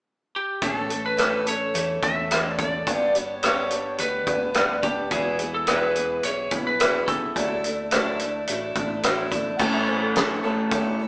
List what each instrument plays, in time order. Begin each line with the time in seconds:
0.36 lead electric guitar G4
0.62 fingered electric bass A1, steel-string acoustic guitar A2 E3 A3 C#4 A4, lead electric guitar A4, kick, closed hi-hat
0.89 steel-string acoustic guitar A3 C#4 A4, closed hi-hat
1.06 lead electric guitar B4
1.17 steel-string acoustic guitar A2 E3 A3 C#4 A4, cross-stick, closed hi-hat
1.46 steel-string acoustic guitar A3 C#4 A4, lead electric guitar C#5, closed hi-hat
1.74 fingered electric bass E2, steel-string acoustic guitar E3 A3 C#4 A4, closed hi-hat
2.02 fingered electric bass E2, steel-string acoustic guitar A3 C#4 A4, lead electric guitar E5, kick, closed hi-hat
2.31 steel-string acoustic guitar A2 E3 A3 C#4 A4, cross-stick, closed hi-hat
2.49 lead electric guitar D5
2.58 steel-string acoustic guitar C#4 A4, lead electric guitar D5, kick, closed hi-hat
2.63 steel-string acoustic guitar A3
2.87 fingered electric bass G1, steel-string acoustic guitar G2 D3 G3 B3 D4 G4, kick, closed hi-hat
3.15 steel-string acoustic guitar G3 B3 D4 G4, lead electric guitar C#5, closed hi-hat
3.43 steel-string acoustic guitar G2 D3 G3 B3 D4 G4, lead electric guitar C#5, cross-stick, closed hi-hat
3.70 steel-string acoustic guitar G3 B3 D4 G4, closed hi-hat
3.98 fingered electric bass D2, steel-string acoustic guitar G3 B3 D4 G4, lead electric guitar B4, closed hi-hat
4.26 fingered electric bass D2, steel-string acoustic guitar G3 B3 D4 G4, kick, closed hi-hat
4.54 steel-string acoustic guitar G2 D3 G3 B3 D4 G4, cross-stick, closed hi-hat
4.83 steel-string acoustic guitar G3 B3 D4 G4, lead electric guitar G4, kick, closed hi-hat
5.11 fingered electric bass E1, steel-string acoustic guitar E2 B2 E3 B3 E4 G#4, lead electric guitar G#4, kick, closed hi-hat
5.38 steel-string acoustic guitar E3 B3 E4 G#4, closed hi-hat
5.54 lead electric guitar A4
5.67 steel-string acoustic guitar E2 B2 E3 B3 E4 G#4, lead electric guitar B4, cross-stick, closed hi-hat
5.95 steel-string acoustic guitar E3 B3 E4 G#4, closed hi-hat
6.23 fingered electric bass B1, steel-string acoustic guitar E3 B3 E4 G#4, lead electric guitar C#5, closed hi-hat
6.51 fingered electric bass B1, steel-string acoustic guitar E3 B3 E4 G#4, kick, closed hi-hat
6.67 lead electric guitar B4
6.80 steel-string acoustic guitar E2 B2 E3 B3 E4 G#4, cross-stick, closed hi-hat
7.08 steel-string acoustic guitar E3 B3 E4 G#4, lead electric guitar A4, kick, closed hi-hat
7.36 fingered electric bass D2, steel-string acoustic guitar D3 F#3 A3 D4 E4, kick, closed hi-hat
7.64 steel-string acoustic guitar A3 D4 E4, closed hi-hat
7.91 steel-string acoustic guitar D3 F#3 A3 D4 E4, cross-stick, closed hi-hat
8.19 steel-string acoustic guitar A3 D4 E4, closed hi-hat
8.47 fingered electric bass A1, steel-string acoustic guitar F#3 A3 D4 E4, closed hi-hat
8.75 fingered electric bass A1, steel-string acoustic guitar A3 D4 E4, kick, closed hi-hat
9.03 steel-string acoustic guitar D3 F#3 A3 D4 E4, cross-stick, closed hi-hat
9.31 steel-string acoustic guitar A3 D4 E4, kick, closed hi-hat
9.57 fingered electric bass A1, steel-string acoustic guitar A2 E3 A3, upright piano F#5, kick, crash
9.61 steel-string acoustic guitar C#4 A4, upright piano G5
9.74 upright piano E5
9.87 steel-string acoustic guitar A3 C#4 A4, upright piano C5
10.01 upright piano A4
10.15 steel-string acoustic guitar E3 A3 C#4 A4, upright piano C#4 A4, snare, closed hi-hat
10.44 clean electric guitar A2 E3, steel-string acoustic guitar A3 C#4 A4
10.71 steel-string acoustic guitar A2 E3 A3 C#4 A4, kick, closed hi-hat
10.99 steel-string acoustic guitar A3 C#4 A4